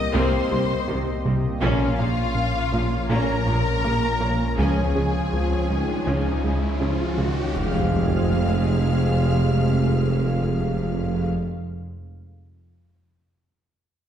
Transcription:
0.00 1.64 C2 medium
0.00 4.58 A#3 medium
0.00 1.63 C4 medium
0.00 1.62 G4 medium
0.00 1.59 A#4 medium
0.00 0.11 D#5 loud
0.00 1.62 D#5 medium
0.00 0.14 D#6 loud
0.13 0.21 C2 loud
0.13 0.28 C2 loud
0.13 0.36 C2 loud
0.13 0.22 C3 medium
0.13 0.48 A#3 loud
0.13 0.40 A#3 medium
0.13 0.48 C4 loud
0.13 0.40 C4 medium
0.13 1.25 C5 loud
0.13 1.26 C6 loud
0.50 0.65 C2 medium
0.50 0.58 C2 medium
0.50 0.74 C2 medium
0.50 0.59 C3 medium
0.50 0.60 G3 medium
0.50 0.60 A#3 medium
0.87 0.95 C2 medium
0.87 1.02 C2 medium
0.87 1.10 C3 medium
0.87 0.96 C3 medium
0.87 0.96 D#3 medium
0.87 0.97 G3 medium
1.24 1.32 C2 medium
1.24 1.39 C2 medium
1.24 1.47 C3 medium
1.24 1.34 C3 medium
1.24 1.33 G3 medium
1.24 1.33 A#3 medium
1.61 1.69 A#1 medium
1.61 1.76 A#1 loud
1.61 4.61 A#1 medium
1.61 1.84 A#2 loud
1.61 1.70 A#2 loud
1.61 1.88 A#3 medium
1.61 1.97 A#3 medium
1.61 1.88 C#4 medium
1.61 1.97 C#4 loud
1.61 7.56 C#4 medium
1.61 3.06 F4 loud
1.61 7.54 F4 medium
1.61 7.55 C#5 medium
1.61 3.06 F5 loud
1.61 riser medium
1.98 2.06 A#1 medium
1.98 2.13 A#1 medium
1.98 2.08 A#2 medium
1.98 2.07 F3 medium
1.98 2.21 A#3 medium
1.98 2.08 A#3 medium
2.35 2.58 A#2 medium
2.72 2.87 A#1 medium
2.72 2.81 A#1 medium
2.72 2.95 A#2 medium
2.72 2.81 A#2 medium
2.72 2.81 F3 medium
2.72 2.81 A#3 medium
3.08 3.17 A#1 medium
3.08 3.24 A#1 medium
3.08 3.32 A#2 medium
3.08 3.18 A#2 medium
3.08 3.37 A#3 medium
3.08 3.45 A#3 medium
3.08 5.28 C#4 medium
3.08 3.45 C#4 medium
3.08 3.37 C#4 medium
3.08 4.59 A#4 loud
3.08 5.27 C#5 medium
3.08 4.55 A#5 loud
3.46 3.54 A#1 medium
3.46 3.62 A#1 medium
3.46 3.69 A#2 medium
3.46 3.55 A#2 medium
3.46 3.56 F3 medium
3.46 3.56 A#3 medium
3.83 3.91 A#1 medium
3.83 3.99 A#1 medium
3.83 3.93 A#2 medium
3.83 3.92 C#3 medium
3.83 3.92 F3 medium
3.83 4.07 A#3 medium
4.20 4.28 A#1 medium
4.20 4.36 A#1 medium
4.20 4.30 A#2 medium
4.20 4.29 F3 medium
4.20 4.28 A#3 medium
4.20 4.43 A#3 medium
4.57 4.65 C#2 medium
4.57 4.73 C#2 medium
4.57 4.81 C#2 loud
4.57 7.55 C#2 medium
4.57 4.66 C#3 medium
4.57 4.93 F3 medium
4.57 7.55 F3 medium
4.57 4.85 F3 medium
4.57 4.93 C#4 medium
4.57 4.85 C#4 medium
4.57 7.14 G#4 medium
4.57 7.14 G#5 medium
4.94 5.03 C#2 medium
4.94 5.10 C#2 soft
4.94 5.02 C#3 medium
4.94 5.03 C#3 medium
4.94 5.18 C#3 medium
4.94 5.03 G#3 medium
5.31 5.55 C#2 medium
5.31 5.66 F3 medium
5.68 5.84 C#2 medium
5.68 5.77 C#2 medium
5.68 5.92 C#2 medium
5.68 5.77 C#3 medium
5.68 5.77 C#3 soft
5.68 6.06 D#3 medium
5.68 5.77 G#3 soft
6.06 6.14 C#2 medium
6.06 6.21 C#2 medium
6.06 6.29 C#2 loud
6.06 6.15 C#3 medium
6.06 6.41 F3 medium
6.06 6.44 F3 medium
6.06 6.41 C#4 medium
6.06 7.51 C#4 soft
6.06 7.51 C#5 soft
6.43 6.51 C#2 soft
6.43 6.66 C#2 medium
6.43 6.59 C#2 medium
6.43 6.52 C#3 medium
6.43 6.80 G#3 medium
6.43 6.52 G#3 medium
6.80 6.89 C#2 medium
6.80 6.96 C#2 soft
6.80 6.88 C#3 soft
6.80 7.03 C#3 medium
6.80 6.89 C#3 medium
6.80 7.18 F3 medium
6.80 6.90 F3 medium
7.18 7.26 C#2 medium
7.18 7.33 C#2 medium
7.18 7.40 C#3 medium
7.18 7.26 C#3 soft
7.18 7.27 C#3 medium
7.18 7.55 D#3 medium
7.18 7.27 G#3 medium
7.54 11.27 F1 medium
7.54 11.28 F1 medium
7.54 11.27 F2 medium
7.54 11.27 G#3 medium
7.54 11.28 G#3 medium
7.54 11.27 C4 medium
7.54 11.27 F4 medium
7.54 11.28 G#4 medium
7.54 11.27 F5 medium
7.54 11.28 F5 medium
7.54 11.27 F6 medium
7.54 impact medium

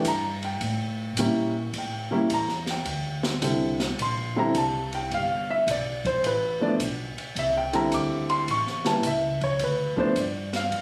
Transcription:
0.05 0.59 G2 medium
0.05 0.43 A#5 medium
0.05 kick soft
0.05 hi-hat pedal medium
0.05 ride medium
0.43 1.14 G5 medium
0.43 ride soft
0.61 1.15 A2 medium
0.61 kick soft
0.61 ride medium
1.17 1.72 A#2 medium
1.17 1.52 G3 medium
1.17 1.52 A#3 medium
1.17 1.52 C#4 medium
1.17 1.53 E4 medium
1.17 kick soft
1.17 hi-hat pedal medium
1.17 ride medium
1.73 2.28 A2 medium
1.73 kick soft
1.73 ride medium
1.78 2.28 G5 medium
2.11 2.28 G3 medium
2.11 2.28 A#3 medium
2.11 2.28 C#4 medium
2.11 2.29 E4 medium
2.30 2.84 E2 medium
2.30 2.68 A#5 loud
2.30 kick soft
2.30 hi-hat pedal medium
2.30 ride medium
2.48 snare soft
2.67 snare soft
2.67 ride soft
2.71 3.40 G5 medium
2.85 3.40 D2 medium
2.85 kick soft
2.85 ride medium
3.23 snare medium
3.42 3.96 C2 loud
3.42 3.76 D3 medium
3.42 3.76 G3 medium
3.42 3.77 C4 medium
3.42 3.77 E4 medium
3.42 kick soft
3.42 hi-hat pedal medium
3.42 ride medium
3.80 snare medium
3.80 ride soft
3.98 4.53 A#1 medium
3.98 4.37 C6 medium
3.98 kick soft
3.98 ride medium
4.36 4.53 D3 medium
4.36 4.53 G3 medium
4.36 4.53 C4 medium
4.36 4.54 E4 medium
4.36 4.56 A#5 medium
4.54 5.09 C2 loud
4.54 4.93 A5 medium
4.54 kick soft
4.54 hi-hat pedal soft
4.54 ride medium
4.93 5.11 G5 medium
4.93 ride soft
5.11 5.65 G1 medium
5.11 5.49 F5 medium
5.11 kick soft
5.11 ride soft
5.50 5.67 E5 medium
5.67 6.21 B1 medium
5.67 kick soft
5.67 hi-hat pedal medium
5.67 ride medium
5.71 6.05 D5 medium
6.05 6.24 C5 medium
6.05 kick medium
6.05 ride soft
6.23 6.77 A1 medium
6.23 6.61 B4 medium
6.23 kick soft
6.23 ride medium
6.60 6.77 F3 medium
6.60 6.78 A3 medium
6.60 6.78 B3 medium
6.60 6.78 D4 medium
6.60 6.73 D5 medium
6.79 7.14 B1 medium
6.79 kick soft
6.79 hi-hat pedal medium
6.79 ride medium
7.17 muted upright bass stroke soft
7.17 ride soft
7.35 7.90 C2 medium
7.35 7.55 E5 medium
7.35 kick soft
7.35 ride medium
7.57 7.74 G5 medium
7.73 8.44 D3 medium
7.73 8.45 G3 medium
7.73 8.45 C4 medium
7.73 8.45 E4 medium
7.73 7.92 A#5 medium
7.73 ride medium
7.92 8.46 D2 medium
7.92 8.29 D6 loud
7.92 kick soft
7.92 hi-hat pedal medium
7.92 ride medium
8.29 8.47 C6 loud
8.29 ride soft
8.48 9.02 A1 medium
8.48 8.85 C#6 loud
8.48 kick soft
8.48 ride medium
8.67 snare soft
8.85 9.02 E3 medium
8.85 9.02 G3 medium
8.85 9.02 A#3 medium
8.85 9.03 E4 medium
8.85 9.04 A5 medium
8.85 snare soft
8.85 ride soft
9.03 9.58 C#2 medium
9.03 kick soft
9.03 hi-hat pedal medium
9.03 ride medium
9.07 9.42 E5 medium
9.41 9.60 C#5 medium
9.41 kick medium
9.41 ride soft
9.59 9.94 D2 medium
9.59 kick soft
9.59 ride medium
9.64 9.98 B4 medium
9.96 10.13 F3 medium
9.96 10.14 A3 medium
9.96 10.14 B3 medium
9.96 10.14 D4 medium
9.96 10.17 C5 medium
9.96 muted upright bass stroke soft
9.96 kick medium
10.16 10.70 G2 loud
10.16 kick soft
10.16 hi-hat pedal medium
10.16 ride medium
10.20 10.54 D5 medium
10.53 10.82 F5 medium
10.53 snare soft
10.53 ride medium
10.71 10.82 F2 medium
10.71 kick soft
10.71 ride medium

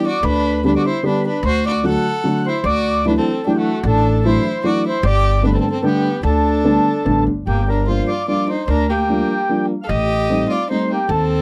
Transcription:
0.05 0.23 F#4 medium
0.05 0.24 D5 loud
0.23 0.75 D2 loud
0.23 0.62 D4 loud
0.23 0.64 B4 loud
0.64 0.84 D3 medium
0.64 0.84 G3 medium
0.64 0.85 B3 medium
0.64 0.85 D4 medium
0.64 0.74 D4 medium
0.64 0.85 G4 medium
0.64 0.74 B4 medium
0.75 0.85 F#4 medium
0.75 0.85 D5 medium
0.86 1.03 E4 medium
0.86 1.04 C5 medium
1.03 1.24 D3 medium
1.03 1.24 G3 medium
1.03 1.24 B3 medium
1.03 1.24 D4 medium
1.03 1.24 G4 medium
1.03 1.25 B4 medium
1.26 1.43 D4 medium
1.26 1.45 B4 loud
1.43 1.95 D2 loud
1.43 1.64 F#4 loud
1.43 1.64 C5 loud
1.66 1.83 F#4 medium
1.66 1.85 D5 medium
1.83 2.04 D3 medium
1.83 2.04 F#3 medium
1.83 2.05 A3 medium
1.83 2.05 D4 medium
1.83 2.05 F#4 medium
1.83 2.43 A4 medium
1.83 2.48 F#5 loud
2.24 2.45 D3 medium
2.24 2.45 F#3 medium
2.24 2.45 A3 soft
2.24 2.45 D4 medium
2.24 2.45 F#4 medium
2.46 2.64 E4 medium
2.46 2.65 C5 medium
2.64 3.16 D2 loud
2.64 3.03 F#4 medium
2.64 3.07 D5 loud
3.05 3.26 E3 medium
3.05 3.26 F#3 soft
3.05 3.26 A3 medium
3.05 3.26 D4 medium
3.05 3.16 D4 medium
3.05 3.26 E4 medium
3.05 3.17 B4 medium
3.17 3.44 C4 medium
3.17 3.47 A4 medium
3.46 3.67 E3 medium
3.46 3.67 F#3 soft
3.46 3.67 A3 medium
3.46 3.55 D4 medium
3.46 3.67 D4 medium
3.46 3.67 E4 medium
3.46 3.57 G4 medium
3.56 3.84 A3 medium
3.56 3.86 F#4 medium
3.83 4.35 A1 loud
3.83 4.23 D4 medium
3.83 4.26 A4 medium
4.25 4.46 E3 medium
4.25 4.46 F#3 medium
4.25 4.46 A3 medium
4.25 4.46 D4 medium
4.25 4.46 E4 medium
4.25 4.62 E4 medium
4.25 4.66 C5 medium
4.64 4.85 E3 medium
4.64 4.85 F#3 medium
4.64 4.85 A3 medium
4.64 4.85 D4 medium
4.64 4.85 E4 medium
4.64 4.84 F#4 medium
4.64 4.84 D5 medium
4.87 5.03 E4 medium
4.87 5.06 C5 loud
5.03 5.55 G1 loud
5.03 5.42 G4 loud
5.03 5.46 D5 loud
5.43 5.65 D3 medium
5.43 5.64 G3 medium
5.43 5.64 A3 medium
5.43 5.65 B3 medium
5.43 5.65 D4 medium
5.43 5.53 D4 medium
5.43 5.56 B4 medium
5.54 5.60 C4 medium
5.54 5.59 A4 medium
5.61 5.68 C4 medium
5.61 5.69 A4 medium
5.71 5.84 C4 medium
5.71 5.85 A4 medium
5.82 6.04 D3 medium
5.82 6.04 G3 medium
5.82 6.04 A3 medium
5.82 6.04 B3 medium
5.82 6.22 B3 medium
5.82 6.04 D4 medium
5.82 6.21 G4 medium
6.23 6.77 D2 loud
6.23 7.24 D4 medium
6.23 7.24 A4 loud
6.64 6.86 D3 medium
6.64 6.86 G3 medium
6.64 6.86 A3 medium
6.64 6.86 B3 medium
6.64 6.86 D4 medium
7.05 7.25 A1 medium
7.05 7.27 D3 medium
7.05 7.27 G3 medium
7.05 7.27 A3 medium
7.05 7.27 B3 medium
7.05 7.27 D4 medium
7.27 7.45 G1 medium
7.47 8.00 G1 medium
7.47 7.67 A#3 medium
7.47 7.69 G4 medium
7.69 7.87 D4 medium
7.69 7.88 A#4 medium
7.87 8.09 F3 medium
7.87 8.09 G3 soft
7.87 8.09 A#3 medium
7.87 8.09 D4 medium
7.87 8.07 F4 medium
7.87 8.10 C5 medium
8.08 8.27 F4 medium
8.08 8.26 D5 medium
8.28 8.49 F3 medium
8.28 8.49 G3 soft
8.28 8.49 A#3 soft
8.28 8.49 D4 medium
8.28 8.48 F4 medium
8.28 8.50 D5 medium
8.49 8.67 D#4 medium
8.49 8.69 C5 medium
8.68 9.20 D2 loud
8.68 8.88 D4 medium
8.68 8.90 A#4 medium
8.90 9.66 A#3 medium
8.90 9.66 G4 medium
9.09 9.30 F3 medium
9.09 9.30 G3 medium
9.09 9.30 A#3 medium
9.09 9.30 D4 medium
9.49 9.70 F3 medium
9.49 9.71 G3 medium
9.49 9.70 A#3 medium
9.49 9.71 D4 medium
9.82 9.88 A4 medium
9.82 9.89 F5 medium
9.89 10.41 A1 loud
9.89 10.46 G4 medium
9.89 10.52 D#5 loud
10.29 10.51 G3 medium
10.29 10.50 A3 medium
10.29 10.51 C4 medium
10.29 10.51 D#4 medium
10.50 10.68 F4 medium
10.50 10.68 D5 medium
10.70 10.91 G3 medium
10.70 10.91 A3 soft
10.70 10.91 C4 medium
10.70 10.90 D#4 medium
10.70 10.91 D#4 medium
10.70 10.91 C5 medium
10.91 11.09 A#3 medium
10.91 11.10 G4 medium
11.09 11.42 D#2 loud
11.09 11.42 C4 loud
11.09 11.42 A4 loud

